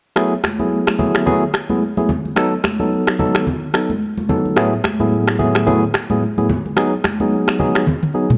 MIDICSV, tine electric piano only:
0, 0, Header, 1, 2, 480
1, 0, Start_track
1, 0, Tempo, 550459
1, 141, Time_signature, 4, 2, 24, 8
1, 7306, End_track
2, 0, Start_track
2, 0, Title_t, "Tine electric piano"
2, 0, Program_c, 0, 4
2, 139, Note_on_c, 0, 54, 91
2, 140, Note_on_c, 0, 57, 83
2, 142, Note_on_c, 0, 59, 81
2, 142, Note_on_c, 0, 64, 78
2, 144, Note_on_c, 0, 68, 101
2, 284, Note_off_c, 0, 54, 0
2, 285, Note_off_c, 0, 57, 0
2, 286, Note_off_c, 0, 59, 0
2, 286, Note_off_c, 0, 64, 0
2, 287, Note_off_c, 0, 68, 0
2, 517, Note_on_c, 0, 54, 73
2, 519, Note_on_c, 0, 57, 66
2, 520, Note_on_c, 0, 59, 69
2, 521, Note_on_c, 0, 64, 67
2, 523, Note_on_c, 0, 68, 79
2, 836, Note_off_c, 0, 54, 0
2, 836, Note_off_c, 0, 57, 0
2, 837, Note_off_c, 0, 59, 0
2, 838, Note_off_c, 0, 64, 0
2, 838, Note_off_c, 0, 68, 0
2, 859, Note_on_c, 0, 54, 72
2, 860, Note_on_c, 0, 57, 65
2, 861, Note_on_c, 0, 59, 68
2, 863, Note_on_c, 0, 64, 66
2, 864, Note_on_c, 0, 68, 83
2, 1084, Note_off_c, 0, 54, 0
2, 1085, Note_off_c, 0, 57, 0
2, 1085, Note_off_c, 0, 59, 0
2, 1086, Note_off_c, 0, 64, 0
2, 1087, Note_off_c, 0, 68, 0
2, 1098, Note_on_c, 0, 54, 83
2, 1099, Note_on_c, 0, 57, 81
2, 1101, Note_on_c, 0, 59, 78
2, 1102, Note_on_c, 0, 64, 79
2, 1104, Note_on_c, 0, 68, 93
2, 1244, Note_off_c, 0, 54, 0
2, 1244, Note_off_c, 0, 57, 0
2, 1245, Note_off_c, 0, 59, 0
2, 1246, Note_off_c, 0, 64, 0
2, 1247, Note_off_c, 0, 68, 0
2, 1479, Note_on_c, 0, 54, 72
2, 1480, Note_on_c, 0, 57, 66
2, 1481, Note_on_c, 0, 59, 69
2, 1483, Note_on_c, 0, 64, 69
2, 1484, Note_on_c, 0, 68, 80
2, 1587, Note_off_c, 0, 54, 0
2, 1588, Note_off_c, 0, 57, 0
2, 1588, Note_off_c, 0, 59, 0
2, 1589, Note_off_c, 0, 64, 0
2, 1590, Note_off_c, 0, 68, 0
2, 1718, Note_on_c, 0, 54, 71
2, 1720, Note_on_c, 0, 57, 68
2, 1721, Note_on_c, 0, 59, 66
2, 1722, Note_on_c, 0, 64, 63
2, 1723, Note_on_c, 0, 68, 82
2, 1827, Note_off_c, 0, 54, 0
2, 1828, Note_off_c, 0, 57, 0
2, 1828, Note_off_c, 0, 59, 0
2, 1829, Note_off_c, 0, 64, 0
2, 1829, Note_off_c, 0, 68, 0
2, 2058, Note_on_c, 0, 54, 91
2, 2060, Note_on_c, 0, 59, 78
2, 2062, Note_on_c, 0, 63, 81
2, 2064, Note_on_c, 0, 69, 104
2, 2204, Note_off_c, 0, 54, 0
2, 2205, Note_off_c, 0, 59, 0
2, 2206, Note_off_c, 0, 63, 0
2, 2207, Note_off_c, 0, 69, 0
2, 2437, Note_on_c, 0, 54, 76
2, 2439, Note_on_c, 0, 59, 68
2, 2441, Note_on_c, 0, 63, 69
2, 2442, Note_on_c, 0, 69, 81
2, 2756, Note_off_c, 0, 54, 0
2, 2757, Note_off_c, 0, 59, 0
2, 2757, Note_off_c, 0, 63, 0
2, 2758, Note_off_c, 0, 69, 0
2, 2779, Note_on_c, 0, 54, 74
2, 2780, Note_on_c, 0, 59, 65
2, 2782, Note_on_c, 0, 63, 66
2, 2784, Note_on_c, 0, 69, 82
2, 3004, Note_off_c, 0, 54, 0
2, 3005, Note_off_c, 0, 59, 0
2, 3006, Note_off_c, 0, 63, 0
2, 3007, Note_off_c, 0, 69, 0
2, 3259, Note_on_c, 0, 54, 69
2, 3261, Note_on_c, 0, 59, 68
2, 3263, Note_on_c, 0, 63, 65
2, 3264, Note_on_c, 0, 69, 80
2, 3404, Note_off_c, 0, 54, 0
2, 3405, Note_off_c, 0, 59, 0
2, 3406, Note_off_c, 0, 63, 0
2, 3407, Note_off_c, 0, 69, 0
2, 3739, Note_on_c, 0, 54, 70
2, 3741, Note_on_c, 0, 59, 66
2, 3743, Note_on_c, 0, 63, 62
2, 3744, Note_on_c, 0, 69, 81
2, 3964, Note_off_c, 0, 54, 0
2, 3965, Note_off_c, 0, 59, 0
2, 3966, Note_off_c, 0, 63, 0
2, 3967, Note_off_c, 0, 69, 0
2, 3979, Note_on_c, 0, 45, 95
2, 3980, Note_on_c, 0, 54, 84
2, 3982, Note_on_c, 0, 57, 81
2, 3983, Note_on_c, 0, 59, 84
2, 3984, Note_on_c, 0, 64, 80
2, 3985, Note_on_c, 0, 68, 100
2, 4124, Note_off_c, 0, 45, 0
2, 4125, Note_off_c, 0, 54, 0
2, 4126, Note_off_c, 0, 57, 0
2, 4126, Note_off_c, 0, 59, 0
2, 4127, Note_off_c, 0, 64, 0
2, 4127, Note_off_c, 0, 68, 0
2, 4358, Note_on_c, 0, 45, 77
2, 4359, Note_on_c, 0, 54, 70
2, 4359, Note_on_c, 0, 57, 70
2, 4361, Note_on_c, 0, 59, 71
2, 4362, Note_on_c, 0, 64, 72
2, 4363, Note_on_c, 0, 68, 83
2, 4676, Note_off_c, 0, 45, 0
2, 4676, Note_off_c, 0, 54, 0
2, 4677, Note_off_c, 0, 57, 0
2, 4677, Note_off_c, 0, 59, 0
2, 4678, Note_off_c, 0, 64, 0
2, 4678, Note_off_c, 0, 68, 0
2, 4699, Note_on_c, 0, 45, 76
2, 4699, Note_on_c, 0, 54, 68
2, 4700, Note_on_c, 0, 57, 69
2, 4702, Note_on_c, 0, 59, 67
2, 4702, Note_on_c, 0, 64, 66
2, 4703, Note_on_c, 0, 68, 84
2, 4924, Note_off_c, 0, 45, 0
2, 4924, Note_off_c, 0, 54, 0
2, 4925, Note_off_c, 0, 57, 0
2, 4925, Note_off_c, 0, 59, 0
2, 4926, Note_off_c, 0, 64, 0
2, 4926, Note_off_c, 0, 68, 0
2, 4938, Note_on_c, 0, 45, 90
2, 4939, Note_on_c, 0, 54, 79
2, 4940, Note_on_c, 0, 57, 81
2, 4942, Note_on_c, 0, 59, 79
2, 4942, Note_on_c, 0, 64, 80
2, 4943, Note_on_c, 0, 68, 97
2, 5084, Note_off_c, 0, 45, 0
2, 5084, Note_off_c, 0, 54, 0
2, 5085, Note_off_c, 0, 57, 0
2, 5086, Note_off_c, 0, 59, 0
2, 5086, Note_off_c, 0, 64, 0
2, 5086, Note_off_c, 0, 68, 0
2, 5318, Note_on_c, 0, 45, 73
2, 5320, Note_on_c, 0, 54, 69
2, 5320, Note_on_c, 0, 57, 67
2, 5322, Note_on_c, 0, 59, 69
2, 5322, Note_on_c, 0, 64, 67
2, 5324, Note_on_c, 0, 68, 86
2, 5427, Note_off_c, 0, 45, 0
2, 5428, Note_off_c, 0, 54, 0
2, 5428, Note_off_c, 0, 57, 0
2, 5429, Note_off_c, 0, 59, 0
2, 5429, Note_off_c, 0, 64, 0
2, 5430, Note_off_c, 0, 68, 0
2, 5559, Note_on_c, 0, 45, 74
2, 5560, Note_on_c, 0, 54, 68
2, 5561, Note_on_c, 0, 57, 65
2, 5562, Note_on_c, 0, 59, 68
2, 5563, Note_on_c, 0, 64, 68
2, 5564, Note_on_c, 0, 68, 84
2, 5667, Note_off_c, 0, 45, 0
2, 5668, Note_off_c, 0, 54, 0
2, 5668, Note_off_c, 0, 57, 0
2, 5669, Note_off_c, 0, 59, 0
2, 5669, Note_off_c, 0, 64, 0
2, 5670, Note_off_c, 0, 68, 0
2, 5899, Note_on_c, 0, 54, 90
2, 5901, Note_on_c, 0, 59, 83
2, 5903, Note_on_c, 0, 63, 84
2, 5905, Note_on_c, 0, 68, 99
2, 6045, Note_off_c, 0, 54, 0
2, 6045, Note_off_c, 0, 59, 0
2, 6046, Note_off_c, 0, 63, 0
2, 6047, Note_off_c, 0, 68, 0
2, 6279, Note_on_c, 0, 54, 73
2, 6280, Note_on_c, 0, 59, 70
2, 6282, Note_on_c, 0, 63, 69
2, 6284, Note_on_c, 0, 68, 83
2, 6596, Note_off_c, 0, 54, 0
2, 6597, Note_off_c, 0, 59, 0
2, 6598, Note_off_c, 0, 63, 0
2, 6599, Note_off_c, 0, 68, 0
2, 6619, Note_on_c, 0, 54, 76
2, 6621, Note_on_c, 0, 59, 70
2, 6623, Note_on_c, 0, 63, 70
2, 6624, Note_on_c, 0, 68, 85
2, 6844, Note_off_c, 0, 54, 0
2, 6845, Note_off_c, 0, 59, 0
2, 6846, Note_off_c, 0, 63, 0
2, 6847, Note_off_c, 0, 68, 0
2, 7098, Note_on_c, 0, 54, 74
2, 7100, Note_on_c, 0, 59, 66
2, 7101, Note_on_c, 0, 63, 67
2, 7103, Note_on_c, 0, 68, 79
2, 7244, Note_off_c, 0, 54, 0
2, 7245, Note_off_c, 0, 59, 0
2, 7246, Note_off_c, 0, 63, 0
2, 7246, Note_off_c, 0, 68, 0
2, 7306, End_track
0, 0, End_of_file